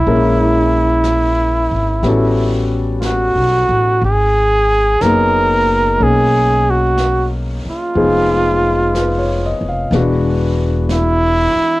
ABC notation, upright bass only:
X:1
M:4/4
L:1/8
Q:"Swing" 1/4=61
K:Abdor
V:1 name="Upright bass" clef=bass
B,,,3 A,,, =A,,,2- (3A,,, =B,,, A,,, | A,,,2 G,,,2 C,,3 z | F,,,3 F,,, =E,,,3 z |]